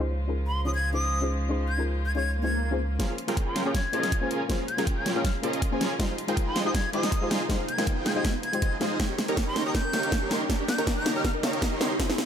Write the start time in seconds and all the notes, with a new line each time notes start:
0.00 C#2 C#3 F3 G#3 C#4 D#4 F4 G#4 C5
0.27 C#4 D#4 F4 G#4 A#4
0.47 C6
0.65 C#4 D#4 F4 G#4 C#5 D#6
0.75 G#6
0.92 C#4 D#4 F4 G#4 C5 D#6
1.21 C#4 D#4 F4 G#4 C5
1.49 C#4 D#4 F4 G#4 C5
1.68 G#6
1.78 C#4 D#4 F4 G#4 A#4
2.06 G#6
2.15 C#4 D#4 F4 G#4 C#5 G#6
2.25 swell
2.43 C#4 D#4 F4 G#4 C5 G#6
2.71 C#4 D#4 F4 G#4 C5
2.99 A#2 F3 G#3 A#3 C#4 F4 G#4 A#4 C5 F5, kick, snare, closed hi-hat, riser
3.18 closed hi-hat
3.27 A#3 C#4 F4 G#4 A#4 G5, snare, closed hi-hat
3.37 kick, closed hi-hat
3.47 C6
3.56 snare, closed hi-hat
3.65 A#3 C#4 F4 G#4 A#4 C#5 G5 D#6
3.75 G#6, kick, snare, closed hi-hat
3.92 A#3 C#4 F4 G#4 A#4 C5 D#5, closed hi-hat
4.03 snare, closed hi-hat
4.12 kick, closed hi-hat
4.21 A#3 C#4 F4 G#4 A#4 C5 G#5
4.31 closed hi-hat
4.48 A#3 C#4 F4 G#4 A#4 C5 F5, kick, snare, closed hi-hat
4.68 G#6, closed hi-hat
4.77 A#3 C#4 F4 G#4 A#4 G5, snare, closed hi-hat
4.87 kick, closed hi-hat
4.97 G#6
5.06 snare, closed hi-hat
5.15 A#3 C#4 F4 G#4 A#4 C#5 G5 F6
5.25 F6, kick, snare, closed hi-hat
5.42 A#3 C#4 F4 G#4 A#4 C5 D#5, closed hi-hat
5.53 closed hi-hat
5.62 kick, closed hi-hat
5.71 A#3 C#4 F4 G#4 A#4 C5 G#5
5.81 snare, closed hi-hat
5.99 C3 G#3 D#4 F4 G4 G#4 C5 F5, kick, snare, closed hi-hat
6.18 closed hi-hat
6.27 G#3 D#4 F4 G#4 A#4 C5 G5, closed hi-hat
6.37 kick, closed hi-hat
6.47 C6
6.56 snare, closed hi-hat
6.65 G#3 D#4 F4 G4 G#4 C5 D#5 G5 D#6
6.75 G#6, kick, snare, closed hi-hat
6.92 G#3 D#4 F4 G4 G#4 C5 D#5 D#6, closed hi-hat
7.03 snare, closed hi-hat
7.12 kick, closed hi-hat
7.21 G#3 D#4 F4 G4 G#4 C5 G#5
7.31 snare, closed hi-hat
7.49 G#3 D#4 F4 G4 G#4 C5 F5, kick, snare, closed hi-hat
7.68 G#6, closed hi-hat
7.77 G#3 D#4 F4 G#4 A#4 C5 G5, snare, closed hi-hat
7.87 kick, closed hi-hat
8.06 G#6, snare, closed hi-hat
8.15 G#3 D#4 F4 G4 G#4 C5 D#5 G5 G#6
8.25 kick, snare, closed hi-hat
8.43 G#6, closed hi-hat
8.52 G#3 D#4 F4 G4 C5, closed hi-hat
8.62 D#4 F4 G#4 C5 D#5, kick, closed hi-hat
8.80 G#3 D#4 F4 G4 G#4 C5 D#5, snare, closed hi-hat
9.00 C#3 G3 A#3 D#4 G4 G5, kick, snare, closed hi-hat
9.10 G4
9.18 snare, closed hi-hat
9.28 D#4 G4 A#4 C#5 A#5, closed hi-hat
9.37 C#5, kick, snare, closed hi-hat
9.47 C6
9.56 D#4, snare, closed hi-hat
9.66 D#4 G4 A#4 C#5 A#5 D#6
9.75 G6, kick, snare, closed hi-hat
9.85 A#4
9.93 D#4 G4 A#4 C#5 F5, snare, closed hi-hat
10.03 closed hi-hat
10.12 D#4, kick, snare, closed hi-hat
10.22 D#4 G4 A#4 C#5 C6
10.31 A#4, snare, closed hi-hat
10.50 D#4 G4 A#4 C#5 G5, kick, snare, closed hi-hat
10.60 G4
10.68 G6, snare, closed hi-hat
10.78 D#4 G4 A#4 C#5 A#5, closed hi-hat
10.87 C#5, kick, snare, closed hi-hat
10.97 G6
11.06 D#4, snare, closed hi-hat
11.16 D#4 G4 A#4 C#5 A#5 F6
11.24 F6, kick, snare, closed hi-hat
11.34 A#4
11.43 D#4 G4 A#4 C#5 F5, snare, closed hi-hat
11.53 closed hi-hat
11.62 D#4, kick, snare, closed hi-hat
11.72 D#4 G4 A#4 C#5 C6
11.81 A#4, snare, closed hi-hat
11.99 G#3 F4 G#4 C5 C#5 G#5, kick, snare, closed hi-hat
12.10 G#4, snare
12.18 snare, closed hi-hat